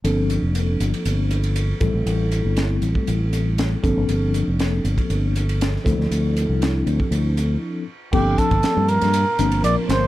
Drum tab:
CC |----------------|----------------|----------------|----------------|
RD |x-x-x-xxx-xxx-x-|x-x-x-x-x-x-x-x-|x-x-x-xxx-xxx-x-|x-x-x-x-x-x-----|
HH |p-p-p-p-p-p-p-p-|p-p-p-p-p-p-p-p-|p-p-p-p-p-p-p-p-|p-p-p-p-p-p-----|
SD |----------------|----o-------o---|----o-------oo-o|----o-----------|
BD |--------------o-|-------o------o-|-------o------o-|-------o--------|

CC |x---------------|
RD |--xxx-xxx-xxx-x-|
HH |--p-p-p-p-p-p-p-|
SD |----o--o------o-|
BD |o-oo------------|